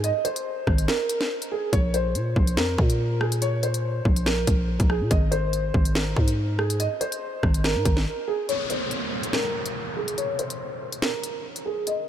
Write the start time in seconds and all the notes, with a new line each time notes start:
Already playing: G#2
0.04 D#5, closed hi-hat
0.25 C5, closed hi-hat
0.36 closed hi-hat
0.67 G#1, kick, cross-stick
0.78 closed hi-hat
0.88 A#4, snare
1.09 closed hi-hat
1.21 snare
1.42 closed hi-hat
1.52 G#4
1.73 A#1 C#5, kick, closed hi-hat
1.94 C5, closed hi-hat
2.15 A#2, closed hi-hat
2.36 A#1, kick
2.47 closed hi-hat
2.57 F2 A#4, snare
2.78 A#2, kick
2.90 closed hi-hat
3.21 G#4, cross-stick
3.32 closed hi-hat
3.42 C#5, closed hi-hat
3.63 C5, closed hi-hat
3.74 closed hi-hat
4.05 A#1, kick
4.16 closed hi-hat
4.26 A#4, snare
4.47 A#1, kick, closed hi-hat
4.80 A#1, kick, closed hi-hat
4.90 G#4, cross-stick
5.01 A#2
5.11 G#1 D#5, kick, closed hi-hat
5.31 C5, closed hi-hat
5.53 closed hi-hat
5.74 G#1, kick
5.85 closed hi-hat
5.95 A#4, snare
6.16 G#2, kick
6.28 closed hi-hat
6.59 G#4, cross-stick
6.70 closed hi-hat
6.80 D#5, closed hi-hat
7.01 C5, closed hi-hat
7.12 closed hi-hat
7.43 G#1, kick, cross-stick
7.54 closed hi-hat
7.64 A#4, snare
7.75 G#2
7.85 G#1, kick, closed hi-hat
7.97 snare
8.28 G#4
8.49 C#5, closed hi-hat, downlifter
8.70 C5, closed hi-hat
8.91 closed hi-hat
9.23 closed hi-hat
9.33 A#4, snare
9.66 closed hi-hat
9.97 G#4
10.08 closed hi-hat
10.18 C#5, closed hi-hat
10.39 C5, closed hi-hat
10.50 closed hi-hat
10.92 closed hi-hat
11.02 A#4, snare
11.24 closed hi-hat
11.56 closed hi-hat
11.66 G#4
11.87 D#5, closed hi-hat